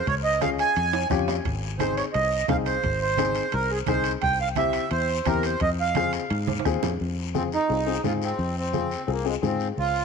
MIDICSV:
0, 0, Header, 1, 6, 480
1, 0, Start_track
1, 0, Key_signature, -4, "minor"
1, 0, Tempo, 346821
1, 91, Time_signature, 4, 2, 24, 8
1, 13905, End_track
2, 0, Start_track
2, 0, Title_t, "Accordion"
2, 0, Program_c, 0, 21
2, 97, Note_on_c, 0, 73, 94
2, 203, Note_off_c, 0, 73, 0
2, 329, Note_on_c, 0, 75, 91
2, 553, Note_off_c, 0, 75, 0
2, 585, Note_on_c, 0, 77, 93
2, 690, Note_off_c, 0, 77, 0
2, 830, Note_on_c, 0, 80, 98
2, 1490, Note_off_c, 0, 80, 0
2, 2480, Note_on_c, 0, 72, 78
2, 2707, Note_off_c, 0, 72, 0
2, 2726, Note_on_c, 0, 73, 75
2, 2834, Note_off_c, 0, 73, 0
2, 2952, Note_on_c, 0, 75, 77
2, 3405, Note_off_c, 0, 75, 0
2, 3443, Note_on_c, 0, 77, 83
2, 3551, Note_off_c, 0, 77, 0
2, 3682, Note_on_c, 0, 72, 81
2, 4148, Note_off_c, 0, 72, 0
2, 4169, Note_on_c, 0, 72, 83
2, 4890, Note_on_c, 0, 70, 79
2, 4909, Note_off_c, 0, 72, 0
2, 5133, Note_on_c, 0, 68, 75
2, 5135, Note_off_c, 0, 70, 0
2, 5239, Note_off_c, 0, 68, 0
2, 5375, Note_on_c, 0, 72, 88
2, 5705, Note_off_c, 0, 72, 0
2, 5849, Note_on_c, 0, 79, 109
2, 6071, Note_off_c, 0, 79, 0
2, 6105, Note_on_c, 0, 77, 95
2, 6208, Note_off_c, 0, 77, 0
2, 6327, Note_on_c, 0, 76, 88
2, 6773, Note_off_c, 0, 76, 0
2, 6805, Note_on_c, 0, 72, 87
2, 7294, Note_on_c, 0, 70, 83
2, 7300, Note_off_c, 0, 72, 0
2, 7535, Note_on_c, 0, 72, 75
2, 7537, Note_off_c, 0, 70, 0
2, 7754, Note_off_c, 0, 72, 0
2, 7781, Note_on_c, 0, 75, 95
2, 7886, Note_off_c, 0, 75, 0
2, 8038, Note_on_c, 0, 77, 89
2, 8470, Note_off_c, 0, 77, 0
2, 10181, Note_on_c, 0, 60, 72
2, 10286, Note_off_c, 0, 60, 0
2, 10432, Note_on_c, 0, 63, 78
2, 11091, Note_off_c, 0, 63, 0
2, 11152, Note_on_c, 0, 65, 83
2, 11255, Note_off_c, 0, 65, 0
2, 11395, Note_on_c, 0, 60, 73
2, 11846, Note_off_c, 0, 60, 0
2, 11867, Note_on_c, 0, 60, 78
2, 12597, Note_on_c, 0, 58, 77
2, 12600, Note_off_c, 0, 60, 0
2, 12808, Note_off_c, 0, 58, 0
2, 12833, Note_on_c, 0, 56, 73
2, 12936, Note_off_c, 0, 56, 0
2, 13076, Note_on_c, 0, 60, 82
2, 13399, Note_off_c, 0, 60, 0
2, 13552, Note_on_c, 0, 65, 95
2, 13905, Note_off_c, 0, 65, 0
2, 13905, End_track
3, 0, Start_track
3, 0, Title_t, "Upright piano"
3, 0, Program_c, 1, 0
3, 570, Note_on_c, 1, 61, 67
3, 577, Note_on_c, 1, 65, 61
3, 584, Note_on_c, 1, 68, 74
3, 906, Note_off_c, 1, 61, 0
3, 910, Note_off_c, 1, 65, 0
3, 913, Note_off_c, 1, 68, 0
3, 1528, Note_on_c, 1, 61, 74
3, 1530, Note_on_c, 1, 65, 74
3, 1539, Note_on_c, 1, 67, 85
3, 1864, Note_off_c, 1, 61, 0
3, 1865, Note_off_c, 1, 65, 0
3, 1870, Note_off_c, 1, 67, 0
3, 2488, Note_on_c, 1, 60, 64
3, 2492, Note_on_c, 1, 63, 54
3, 2500, Note_on_c, 1, 68, 64
3, 2823, Note_off_c, 1, 60, 0
3, 2826, Note_off_c, 1, 63, 0
3, 2829, Note_off_c, 1, 68, 0
3, 3436, Note_on_c, 1, 60, 64
3, 3444, Note_on_c, 1, 63, 57
3, 3445, Note_on_c, 1, 68, 66
3, 3777, Note_off_c, 1, 60, 0
3, 3781, Note_off_c, 1, 63, 0
3, 3782, Note_off_c, 1, 68, 0
3, 4395, Note_on_c, 1, 60, 69
3, 4399, Note_on_c, 1, 63, 60
3, 4409, Note_on_c, 1, 68, 74
3, 4737, Note_off_c, 1, 60, 0
3, 4739, Note_off_c, 1, 63, 0
3, 4743, Note_off_c, 1, 68, 0
3, 5362, Note_on_c, 1, 60, 65
3, 5367, Note_on_c, 1, 63, 64
3, 5376, Note_on_c, 1, 68, 76
3, 5700, Note_off_c, 1, 60, 0
3, 5702, Note_off_c, 1, 63, 0
3, 5707, Note_off_c, 1, 68, 0
3, 6321, Note_on_c, 1, 60, 66
3, 6328, Note_on_c, 1, 64, 64
3, 6329, Note_on_c, 1, 67, 75
3, 6659, Note_off_c, 1, 60, 0
3, 6663, Note_off_c, 1, 64, 0
3, 6663, Note_off_c, 1, 67, 0
3, 7282, Note_on_c, 1, 60, 65
3, 7291, Note_on_c, 1, 67, 67
3, 7292, Note_on_c, 1, 64, 61
3, 7620, Note_off_c, 1, 60, 0
3, 7624, Note_off_c, 1, 67, 0
3, 7625, Note_off_c, 1, 64, 0
3, 8250, Note_on_c, 1, 60, 66
3, 8252, Note_on_c, 1, 65, 59
3, 8257, Note_on_c, 1, 68, 75
3, 8584, Note_off_c, 1, 60, 0
3, 8585, Note_off_c, 1, 65, 0
3, 8588, Note_off_c, 1, 68, 0
3, 9208, Note_on_c, 1, 60, 77
3, 9211, Note_on_c, 1, 65, 67
3, 9220, Note_on_c, 1, 68, 85
3, 9543, Note_off_c, 1, 60, 0
3, 9545, Note_off_c, 1, 65, 0
3, 9549, Note_off_c, 1, 68, 0
3, 10160, Note_on_c, 1, 60, 55
3, 10163, Note_on_c, 1, 65, 60
3, 10170, Note_on_c, 1, 68, 72
3, 10332, Note_off_c, 1, 60, 0
3, 10333, Note_off_c, 1, 65, 0
3, 10337, Note_off_c, 1, 68, 0
3, 10637, Note_on_c, 1, 60, 57
3, 10643, Note_on_c, 1, 65, 52
3, 10652, Note_on_c, 1, 68, 60
3, 10726, Note_off_c, 1, 60, 0
3, 10729, Note_off_c, 1, 65, 0
3, 10734, Note_off_c, 1, 68, 0
3, 10880, Note_on_c, 1, 60, 61
3, 10889, Note_on_c, 1, 65, 53
3, 10889, Note_on_c, 1, 68, 70
3, 10968, Note_off_c, 1, 60, 0
3, 10972, Note_off_c, 1, 65, 0
3, 10973, Note_off_c, 1, 68, 0
3, 11122, Note_on_c, 1, 60, 62
3, 11126, Note_on_c, 1, 65, 56
3, 11132, Note_on_c, 1, 68, 69
3, 11461, Note_off_c, 1, 60, 0
3, 11463, Note_off_c, 1, 65, 0
3, 11466, Note_off_c, 1, 68, 0
3, 12078, Note_on_c, 1, 60, 57
3, 12088, Note_on_c, 1, 65, 54
3, 12093, Note_on_c, 1, 68, 65
3, 12252, Note_off_c, 1, 60, 0
3, 12257, Note_off_c, 1, 65, 0
3, 12259, Note_off_c, 1, 68, 0
3, 12552, Note_on_c, 1, 60, 52
3, 12559, Note_on_c, 1, 65, 54
3, 12564, Note_on_c, 1, 68, 65
3, 12645, Note_off_c, 1, 60, 0
3, 12648, Note_off_c, 1, 65, 0
3, 12651, Note_off_c, 1, 68, 0
3, 12797, Note_on_c, 1, 60, 64
3, 12804, Note_on_c, 1, 65, 56
3, 12811, Note_on_c, 1, 68, 70
3, 12887, Note_off_c, 1, 60, 0
3, 12891, Note_off_c, 1, 65, 0
3, 12894, Note_off_c, 1, 68, 0
3, 13036, Note_on_c, 1, 60, 58
3, 13044, Note_on_c, 1, 65, 55
3, 13050, Note_on_c, 1, 68, 68
3, 13379, Note_off_c, 1, 60, 0
3, 13383, Note_off_c, 1, 65, 0
3, 13386, Note_off_c, 1, 68, 0
3, 13905, End_track
4, 0, Start_track
4, 0, Title_t, "Fingered electric bass"
4, 0, Program_c, 2, 33
4, 99, Note_on_c, 2, 37, 91
4, 863, Note_off_c, 2, 37, 0
4, 1060, Note_on_c, 2, 41, 87
4, 1439, Note_off_c, 2, 41, 0
4, 1535, Note_on_c, 2, 41, 88
4, 1916, Note_off_c, 2, 41, 0
4, 2013, Note_on_c, 2, 32, 86
4, 2779, Note_off_c, 2, 32, 0
4, 2977, Note_on_c, 2, 36, 93
4, 3357, Note_off_c, 2, 36, 0
4, 3452, Note_on_c, 2, 36, 87
4, 3834, Note_off_c, 2, 36, 0
4, 3934, Note_on_c, 2, 32, 90
4, 4699, Note_off_c, 2, 32, 0
4, 4895, Note_on_c, 2, 36, 95
4, 5275, Note_off_c, 2, 36, 0
4, 5369, Note_on_c, 2, 36, 80
4, 5752, Note_off_c, 2, 36, 0
4, 5852, Note_on_c, 2, 36, 89
4, 6617, Note_off_c, 2, 36, 0
4, 6799, Note_on_c, 2, 40, 89
4, 7186, Note_off_c, 2, 40, 0
4, 7281, Note_on_c, 2, 40, 84
4, 7667, Note_off_c, 2, 40, 0
4, 7765, Note_on_c, 2, 41, 90
4, 8534, Note_off_c, 2, 41, 0
4, 8728, Note_on_c, 2, 44, 89
4, 9111, Note_off_c, 2, 44, 0
4, 9208, Note_on_c, 2, 39, 81
4, 9423, Note_off_c, 2, 39, 0
4, 9450, Note_on_c, 2, 41, 72
4, 9665, Note_off_c, 2, 41, 0
4, 9701, Note_on_c, 2, 41, 72
4, 10464, Note_off_c, 2, 41, 0
4, 10654, Note_on_c, 2, 36, 84
4, 11036, Note_off_c, 2, 36, 0
4, 11132, Note_on_c, 2, 44, 81
4, 11515, Note_off_c, 2, 44, 0
4, 11607, Note_on_c, 2, 41, 80
4, 12377, Note_off_c, 2, 41, 0
4, 12565, Note_on_c, 2, 36, 89
4, 12951, Note_off_c, 2, 36, 0
4, 13050, Note_on_c, 2, 44, 86
4, 13435, Note_off_c, 2, 44, 0
4, 13531, Note_on_c, 2, 37, 75
4, 13905, Note_off_c, 2, 37, 0
4, 13905, End_track
5, 0, Start_track
5, 0, Title_t, "Two-headed folk drums"
5, 96, Note_on_c, 9, 36, 84
5, 235, Note_off_c, 9, 36, 0
5, 573, Note_on_c, 9, 37, 75
5, 711, Note_off_c, 9, 37, 0
5, 1534, Note_on_c, 9, 36, 75
5, 1534, Note_on_c, 9, 37, 77
5, 1672, Note_off_c, 9, 36, 0
5, 1673, Note_off_c, 9, 37, 0
5, 2009, Note_on_c, 9, 36, 84
5, 2148, Note_off_c, 9, 36, 0
5, 2495, Note_on_c, 9, 37, 75
5, 2633, Note_off_c, 9, 37, 0
5, 3447, Note_on_c, 9, 37, 71
5, 3448, Note_on_c, 9, 36, 73
5, 3585, Note_off_c, 9, 37, 0
5, 3587, Note_off_c, 9, 36, 0
5, 3927, Note_on_c, 9, 36, 79
5, 4065, Note_off_c, 9, 36, 0
5, 4416, Note_on_c, 9, 37, 73
5, 4554, Note_off_c, 9, 37, 0
5, 5368, Note_on_c, 9, 36, 77
5, 5374, Note_on_c, 9, 37, 76
5, 5506, Note_off_c, 9, 36, 0
5, 5513, Note_off_c, 9, 37, 0
5, 5845, Note_on_c, 9, 36, 78
5, 5984, Note_off_c, 9, 36, 0
5, 6322, Note_on_c, 9, 37, 70
5, 6460, Note_off_c, 9, 37, 0
5, 7284, Note_on_c, 9, 36, 75
5, 7288, Note_on_c, 9, 37, 77
5, 7422, Note_off_c, 9, 36, 0
5, 7427, Note_off_c, 9, 37, 0
5, 7765, Note_on_c, 9, 36, 81
5, 7904, Note_off_c, 9, 36, 0
5, 8256, Note_on_c, 9, 37, 79
5, 8394, Note_off_c, 9, 37, 0
5, 9208, Note_on_c, 9, 37, 77
5, 9210, Note_on_c, 9, 36, 75
5, 9346, Note_off_c, 9, 37, 0
5, 9348, Note_off_c, 9, 36, 0
5, 13905, End_track
6, 0, Start_track
6, 0, Title_t, "Drums"
6, 87, Note_on_c, 9, 74, 63
6, 100, Note_on_c, 9, 65, 60
6, 104, Note_on_c, 9, 63, 31
6, 225, Note_off_c, 9, 74, 0
6, 238, Note_off_c, 9, 65, 0
6, 242, Note_off_c, 9, 63, 0
6, 566, Note_on_c, 9, 73, 65
6, 575, Note_on_c, 9, 63, 73
6, 578, Note_on_c, 9, 65, 60
6, 705, Note_off_c, 9, 73, 0
6, 714, Note_off_c, 9, 63, 0
6, 717, Note_off_c, 9, 65, 0
6, 811, Note_on_c, 9, 73, 58
6, 820, Note_on_c, 9, 65, 63
6, 949, Note_off_c, 9, 73, 0
6, 958, Note_off_c, 9, 65, 0
6, 1051, Note_on_c, 9, 74, 66
6, 1056, Note_on_c, 9, 63, 31
6, 1058, Note_on_c, 9, 65, 64
6, 1190, Note_off_c, 9, 74, 0
6, 1194, Note_off_c, 9, 63, 0
6, 1196, Note_off_c, 9, 65, 0
6, 1292, Note_on_c, 9, 65, 88
6, 1430, Note_off_c, 9, 65, 0
6, 1522, Note_on_c, 9, 63, 77
6, 1533, Note_on_c, 9, 73, 60
6, 1661, Note_off_c, 9, 63, 0
6, 1671, Note_off_c, 9, 73, 0
6, 1770, Note_on_c, 9, 66, 88
6, 1778, Note_on_c, 9, 73, 71
6, 1909, Note_off_c, 9, 66, 0
6, 1916, Note_off_c, 9, 73, 0
6, 2008, Note_on_c, 9, 74, 61
6, 2011, Note_on_c, 9, 63, 31
6, 2012, Note_on_c, 9, 65, 62
6, 2147, Note_off_c, 9, 74, 0
6, 2149, Note_off_c, 9, 63, 0
6, 2151, Note_off_c, 9, 65, 0
6, 2480, Note_on_c, 9, 63, 74
6, 2490, Note_on_c, 9, 65, 55
6, 2491, Note_on_c, 9, 73, 67
6, 2618, Note_off_c, 9, 63, 0
6, 2629, Note_off_c, 9, 65, 0
6, 2629, Note_off_c, 9, 73, 0
6, 2732, Note_on_c, 9, 73, 60
6, 2734, Note_on_c, 9, 65, 56
6, 2870, Note_off_c, 9, 73, 0
6, 2872, Note_off_c, 9, 65, 0
6, 2959, Note_on_c, 9, 63, 32
6, 2965, Note_on_c, 9, 74, 72
6, 2967, Note_on_c, 9, 65, 62
6, 3098, Note_off_c, 9, 63, 0
6, 3104, Note_off_c, 9, 74, 0
6, 3105, Note_off_c, 9, 65, 0
6, 3437, Note_on_c, 9, 73, 65
6, 3438, Note_on_c, 9, 63, 80
6, 3445, Note_on_c, 9, 65, 60
6, 3575, Note_off_c, 9, 73, 0
6, 3576, Note_off_c, 9, 63, 0
6, 3584, Note_off_c, 9, 65, 0
6, 3679, Note_on_c, 9, 73, 70
6, 3684, Note_on_c, 9, 65, 61
6, 3817, Note_off_c, 9, 73, 0
6, 3822, Note_off_c, 9, 65, 0
6, 3919, Note_on_c, 9, 74, 64
6, 3921, Note_on_c, 9, 63, 33
6, 3925, Note_on_c, 9, 65, 60
6, 4057, Note_off_c, 9, 74, 0
6, 4060, Note_off_c, 9, 63, 0
6, 4064, Note_off_c, 9, 65, 0
6, 4393, Note_on_c, 9, 63, 74
6, 4401, Note_on_c, 9, 73, 75
6, 4407, Note_on_c, 9, 65, 62
6, 4531, Note_off_c, 9, 63, 0
6, 4540, Note_off_c, 9, 73, 0
6, 4545, Note_off_c, 9, 65, 0
6, 4633, Note_on_c, 9, 73, 62
6, 4642, Note_on_c, 9, 65, 57
6, 4771, Note_off_c, 9, 73, 0
6, 4781, Note_off_c, 9, 65, 0
6, 4873, Note_on_c, 9, 74, 67
6, 4875, Note_on_c, 9, 65, 69
6, 4876, Note_on_c, 9, 63, 31
6, 5011, Note_off_c, 9, 74, 0
6, 5013, Note_off_c, 9, 65, 0
6, 5015, Note_off_c, 9, 63, 0
6, 5347, Note_on_c, 9, 63, 79
6, 5353, Note_on_c, 9, 65, 61
6, 5354, Note_on_c, 9, 73, 60
6, 5486, Note_off_c, 9, 63, 0
6, 5492, Note_off_c, 9, 65, 0
6, 5493, Note_off_c, 9, 73, 0
6, 5589, Note_on_c, 9, 65, 66
6, 5594, Note_on_c, 9, 73, 67
6, 5728, Note_off_c, 9, 65, 0
6, 5733, Note_off_c, 9, 73, 0
6, 5835, Note_on_c, 9, 65, 62
6, 5837, Note_on_c, 9, 74, 66
6, 5840, Note_on_c, 9, 63, 32
6, 5973, Note_off_c, 9, 65, 0
6, 5975, Note_off_c, 9, 74, 0
6, 5978, Note_off_c, 9, 63, 0
6, 6306, Note_on_c, 9, 63, 79
6, 6314, Note_on_c, 9, 65, 61
6, 6318, Note_on_c, 9, 73, 75
6, 6444, Note_off_c, 9, 63, 0
6, 6452, Note_off_c, 9, 65, 0
6, 6456, Note_off_c, 9, 73, 0
6, 6548, Note_on_c, 9, 65, 61
6, 6553, Note_on_c, 9, 73, 58
6, 6687, Note_off_c, 9, 65, 0
6, 6691, Note_off_c, 9, 73, 0
6, 6792, Note_on_c, 9, 65, 63
6, 6798, Note_on_c, 9, 74, 69
6, 6803, Note_on_c, 9, 63, 31
6, 6930, Note_off_c, 9, 65, 0
6, 6937, Note_off_c, 9, 74, 0
6, 6941, Note_off_c, 9, 63, 0
6, 7273, Note_on_c, 9, 65, 63
6, 7277, Note_on_c, 9, 73, 62
6, 7280, Note_on_c, 9, 63, 73
6, 7411, Note_off_c, 9, 65, 0
6, 7415, Note_off_c, 9, 73, 0
6, 7418, Note_off_c, 9, 63, 0
6, 7518, Note_on_c, 9, 65, 64
6, 7523, Note_on_c, 9, 73, 71
6, 7656, Note_off_c, 9, 65, 0
6, 7662, Note_off_c, 9, 73, 0
6, 7750, Note_on_c, 9, 65, 65
6, 7761, Note_on_c, 9, 74, 65
6, 7765, Note_on_c, 9, 63, 31
6, 7889, Note_off_c, 9, 65, 0
6, 7899, Note_off_c, 9, 74, 0
6, 7904, Note_off_c, 9, 63, 0
6, 8234, Note_on_c, 9, 63, 81
6, 8234, Note_on_c, 9, 65, 61
6, 8243, Note_on_c, 9, 73, 69
6, 8372, Note_off_c, 9, 65, 0
6, 8373, Note_off_c, 9, 63, 0
6, 8381, Note_off_c, 9, 73, 0
6, 8481, Note_on_c, 9, 65, 66
6, 8481, Note_on_c, 9, 73, 65
6, 8619, Note_off_c, 9, 73, 0
6, 8620, Note_off_c, 9, 65, 0
6, 8725, Note_on_c, 9, 65, 67
6, 8728, Note_on_c, 9, 63, 30
6, 8728, Note_on_c, 9, 74, 68
6, 8863, Note_off_c, 9, 65, 0
6, 8866, Note_off_c, 9, 74, 0
6, 8867, Note_off_c, 9, 63, 0
6, 8959, Note_on_c, 9, 63, 93
6, 8968, Note_on_c, 9, 65, 69
6, 9097, Note_off_c, 9, 63, 0
6, 9106, Note_off_c, 9, 65, 0
6, 9125, Note_on_c, 9, 65, 92
6, 9212, Note_on_c, 9, 73, 60
6, 9264, Note_off_c, 9, 65, 0
6, 9350, Note_off_c, 9, 73, 0
6, 9449, Note_on_c, 9, 64, 77
6, 9451, Note_on_c, 9, 73, 70
6, 9452, Note_on_c, 9, 66, 73
6, 9587, Note_off_c, 9, 64, 0
6, 9589, Note_off_c, 9, 73, 0
6, 9590, Note_off_c, 9, 66, 0
6, 9686, Note_on_c, 9, 74, 58
6, 9687, Note_on_c, 9, 63, 30
6, 9824, Note_off_c, 9, 74, 0
6, 9825, Note_off_c, 9, 63, 0
6, 10169, Note_on_c, 9, 73, 62
6, 10172, Note_on_c, 9, 63, 73
6, 10307, Note_off_c, 9, 73, 0
6, 10310, Note_off_c, 9, 63, 0
6, 10413, Note_on_c, 9, 73, 56
6, 10551, Note_off_c, 9, 73, 0
6, 10651, Note_on_c, 9, 63, 28
6, 10656, Note_on_c, 9, 74, 67
6, 10789, Note_off_c, 9, 63, 0
6, 10794, Note_off_c, 9, 74, 0
6, 11127, Note_on_c, 9, 63, 70
6, 11135, Note_on_c, 9, 73, 59
6, 11266, Note_off_c, 9, 63, 0
6, 11273, Note_off_c, 9, 73, 0
6, 11370, Note_on_c, 9, 73, 68
6, 11509, Note_off_c, 9, 73, 0
6, 11606, Note_on_c, 9, 63, 30
6, 11614, Note_on_c, 9, 74, 60
6, 11744, Note_off_c, 9, 63, 0
6, 11752, Note_off_c, 9, 74, 0
6, 12089, Note_on_c, 9, 73, 70
6, 12090, Note_on_c, 9, 63, 65
6, 12227, Note_off_c, 9, 73, 0
6, 12229, Note_off_c, 9, 63, 0
6, 12336, Note_on_c, 9, 73, 56
6, 12475, Note_off_c, 9, 73, 0
6, 12571, Note_on_c, 9, 63, 30
6, 12571, Note_on_c, 9, 74, 65
6, 12709, Note_off_c, 9, 63, 0
6, 12709, Note_off_c, 9, 74, 0
6, 13050, Note_on_c, 9, 63, 67
6, 13056, Note_on_c, 9, 73, 60
6, 13188, Note_off_c, 9, 63, 0
6, 13194, Note_off_c, 9, 73, 0
6, 13288, Note_on_c, 9, 73, 67
6, 13426, Note_off_c, 9, 73, 0
6, 13525, Note_on_c, 9, 63, 34
6, 13536, Note_on_c, 9, 74, 59
6, 13664, Note_off_c, 9, 63, 0
6, 13675, Note_off_c, 9, 74, 0
6, 13905, End_track
0, 0, End_of_file